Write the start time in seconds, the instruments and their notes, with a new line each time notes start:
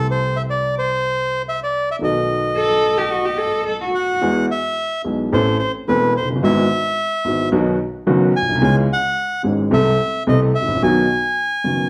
Already playing: grand piano C2 C3 E3 A3 C4 G4
0.11 bandoneon C5
0.36 bandoneon E5
0.50 bandoneon D5
0.78 bandoneon C5
1.49 bandoneon E5
1.63 bandoneon D5
1.91 bandoneon E5
1.99 grand piano B1 B2 D#3 A3 B3
2.03 grand piano F#4, bandoneon D#5
2.57 cello A4
2.98 cello G4
3.11 cello F#4
3.25 cello G4
3.38 cello A4
3.65 cello A4
3.80 cello F#4
3.95 bandoneon F#5
4.21 grand piano E2 E3 G#3 B3 G#4
4.51 bandoneon E5
5.04 grand piano B1 B2 E3 G#3 B3 G#4
5.32 grand piano A1 A2 E3 A3 C4 A4, bandoneon C5
5.59 bandoneon C5
5.88 grand piano E1 E2 E3 A3 C4 A4, bandoneon B4
6.17 bandoneon C5
6.22 grand piano F1
6.30 grand piano F#1
6.36 grand piano G1
6.43 grand piano G#1 G#2 E3 G#3 B3 F#4, bandoneon E5
7.25 grand piano G#1 G#2 E3 G#3 B3 F#4
7.52 grand piano B1 B2 D#3 F#3 B3 F#4
8.07 grand piano F#1 F#2 D#3 F#3 B3 F#4
8.36 bandoneon G#5
8.42 grand piano A#1
8.49 grand piano B1
8.55 grand piano C2
8.61 grand piano C#2 C#3 E3 G#3 C#4 G#4, bandoneon G#5
8.93 bandoneon F#5
9.43 grand piano G#1 G#2 E3 G#3 C#4 G#4
9.71 grand piano C2 C3 E3 A3 C4 A4, bandoneon E5
10.27 grand piano C2 C3 E3 A3 C4 A4, bandoneon D#5
10.55 bandoneon E5
10.62 grand piano G#1
10.67 grand piano A1
10.75 grand piano A#1
10.82 grand piano B1 B2 D#3 F#3 B3 F#4, bandoneon G#5
11.64 grand piano F#1 F#2 D#3 F#3 B3 F#4